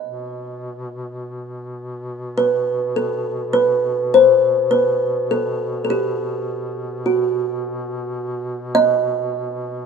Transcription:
Already playing: kalimba D#5
0.03 duduk B2
2.38 kalimba B4
2.96 kalimba A4
3.53 kalimba B4
4.14 kalimba C5
4.71 kalimba B4
5.31 kalimba A4
5.85 kalimba A4
5.90 kalimba G4
7.06 kalimba F#4
8.75 kalimba D#5

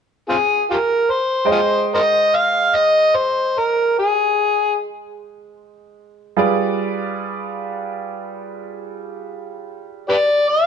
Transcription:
0.29 harmonica C4 F4 G#4
0.71 harmonica F4 G4 A#4
1.10 harmonica C5
1.45 upright piano G#3 C5 D#5 G5
1.52 harmonica F4 G#4 C5
1.94 harmonica A#4 C5 D#5
2.36 harmonica F5
2.75 harmonica D#5
3.15 harmonica C5
3.58 harmonica A#4
3.99 harmonica G#4
6.37 upright piano G3 F4 G#4 B4 D5
10.09 harmonica G4 B4 D5
10.49 harmonica F5

